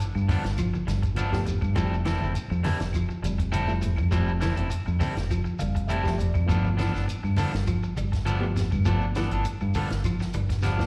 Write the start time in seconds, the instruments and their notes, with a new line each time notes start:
0.00 closed hi-hat, shekere
0.15 fingered electric bass G2, muted clean electric guitar stroke, claves, shekere
0.28 clean electric guitar D3 F3 B3 D4 A4, kick, open hi-hat, high conga, low conga, shekere
0.44 fingered electric bass G1, muted clean electric guitar stroke, snare, closed hi-hat, shekere
0.57 clean electric guitar F3, kick, closed hi-hat, claves, shekere
0.74 muted clean electric guitar stroke, high conga, shekere
0.87 fingered electric bass G1, clean electric guitar G3, muted clean electric guitar stroke, snare, closed hi-hat, high conga, shekere
1.02 muted clean electric guitar stroke, kick, closed hi-hat, shekere
1.15 clean electric guitar F3 B3 D4 A4, reed electric piano B3 F4, closed hi-hat, high conga, claves, shekere
1.32 clean electric guitar F3, reed electric piano A3 B3 G4, kick, snare, shekere
1.46 muted clean electric guitar stroke, closed hi-hat, low conga, shekere
1.61 fingered electric bass G2, muted clean electric guitar stroke, kick, claves, shekere
1.75 fingered electric bass F1, clean electric guitar F3 G3 C4 E4 A4, reed electric piano G3 A3 E4, kick, closed hi-hat, shekere
1.94 shekere
2.05 clean electric guitar E3 G3 C4 E4 A4, snare, closed hi-hat, high conga, claves, shekere
2.21 fingered electric bass F1, clean electric guitar C4 E4 A4, high conga, shekere
2.34 muted clean electric guitar stroke, closed hi-hat, shekere
2.50 fingered electric bass F2, muted clean electric guitar stroke, claves, shekere
2.63 clean electric guitar D3 G3 C4 E4 A4, open hi-hat, high conga, low conga, shekere
2.79 fingered electric bass F1, muted clean electric guitar stroke, snare, closed hi-hat, shekere
2.93 clean electric guitar F3, kick, closed hi-hat, claves, shekere
3.09 muted clean electric guitar stroke, shekere
3.22 fingered electric bass F1, clean electric guitar G3, muted clean electric guitar stroke, closed hi-hat, high conga, shekere
3.38 muted clean electric guitar stroke, kick, closed hi-hat, shekere
3.52 clean electric guitar G3 C4 E4 A4, reed electric piano A3 E4, closed hi-hat, high conga, claves, shekere
3.68 clean electric guitar F3, reed electric piano G3 A3 E4, shekere
3.81 muted clean electric guitar stroke, closed hi-hat, low conga, shekere
3.96 fingered electric bass F2, muted clean electric guitar stroke, kick, claves, shekere
4.11 fingered electric bass F1, clean electric guitar F3 G3 C4 E4 A4, reed electric piano G3 A3 C4, kick, closed hi-hat, shekere
4.28 shekere
4.40 clean electric guitar E3 G3 C4 E4 A4, snare, closed hi-hat, high conga, claves, shekere
4.56 fingered electric bass F1, clean electric guitar C4 E4 A4, closed hi-hat, shekere
4.70 muted clean electric guitar stroke, closed hi-hat, shekere
4.86 fingered electric bass F2, muted clean electric guitar stroke, claves, shekere
4.99 clean electric guitar D3 G3 C4 E4 A4, kick, open hi-hat, high conga, low conga, shekere
5.16 fingered electric bass F1, muted clean electric guitar stroke, snare, closed hi-hat, shekere
5.31 clean electric guitar F3, kick, closed hi-hat, claves, shekere
5.44 muted clean electric guitar stroke, shekere
5.59 fingered electric bass F1, clean electric guitar G3, reed electric piano F5, muted clean electric guitar stroke, closed hi-hat, high conga, shekere
5.75 muted clean electric guitar stroke, kick, closed hi-hat, shekere
5.87 clean electric guitar G3 C4 E4 A4, reed electric piano A3 G4 E5, closed hi-hat, high conga, claves, shekere
6.03 clean electric guitar F3, reed electric piano G3 A3 G4, kick, snare, shekere
6.18 reed electric piano D5, muted clean electric guitar stroke, closed hi-hat, low conga, shekere
6.34 fingered electric bass F2, muted clean electric guitar stroke, kick, claves, shekere
6.46 fingered electric bass G1, clean electric guitar F3 B3 D4 A4, reed electric piano A3 B3 F4, kick, closed hi-hat, shekere
6.50 clean electric guitar F3
6.65 high conga, shekere
6.77 clean electric guitar E3 F3 B3 D4 A4, snare, closed hi-hat, high conga, claves, shekere
6.92 fingered electric bass G1, clean electric guitar B3 D4 A4, snare, shekere
7.07 muted clean electric guitar stroke, closed hi-hat, shekere
7.23 fingered electric bass G2, muted clean electric guitar stroke, claves, shekere
7.37 clean electric guitar D3 F3 B3 D4 A4, open hi-hat, high conga, low conga, shekere
7.53 fingered electric bass G1, muted clean electric guitar stroke, snare, closed hi-hat, shekere
7.67 clean electric guitar F3, kick, closed hi-hat, claves, shekere
7.83 muted clean electric guitar stroke, shekere
7.96 fingered electric bass G1, clean electric guitar G3, muted clean electric guitar stroke, closed hi-hat, high conga, shekere
8.12 muted clean electric guitar stroke, kick, snare, closed hi-hat, shekere
8.25 clean electric guitar F3 B3 D4 A4, reed electric piano B3 F4, closed hi-hat, high conga, claves, shekere
8.41 clean electric guitar F3, reed electric piano A3 B3 G4, shekere
8.56 muted clean electric guitar stroke, snare, closed hi-hat, low conga, shekere
8.71 fingered electric bass G2, muted clean electric guitar stroke, kick, high conga, claves, shekere
8.85 fingered electric bass G1, clean electric guitar F3 B3 D4 A4, reed electric piano A3 B3 F4, kick, closed hi-hat, shekere
9.01 shekere
9.15 clean electric guitar E3 B3 D4 A4, muted clean electric guitar stroke, snare, closed hi-hat, high conga, claves, shekere
9.31 fingered electric bass G1, clean electric guitar B3 D4 A4, closed hi-hat, shekere
9.45 muted clean electric guitar stroke, closed hi-hat, shekere
9.61 fingered electric bass G2, muted clean electric guitar stroke, claves, shekere
9.74 clean electric guitar D3 F3 B3 D4 A4, kick, open hi-hat, high conga, low conga, shekere
9.90 fingered electric bass G1, muted clean electric guitar stroke, snare, closed hi-hat, shekere
10.04 clean electric guitar F3, kick, closed hi-hat, claves, shekere
10.20 muted clean electric guitar stroke, snare, shekere
10.33 fingered electric bass G1, clean electric guitar G3, muted clean electric guitar stroke, closed hi-hat, high conga, shekere
10.49 muted clean electric guitar stroke, kick, snare, closed hi-hat, shekere
10.61 clean electric guitar F3 B3 D4, reed electric piano B3 G4, muted clean electric guitar stroke, snare, closed hi-hat, high conga, claves, shekere
10.78 reed electric piano A3 B3 F4, muted clean electric guitar stroke, kick, snare, shekere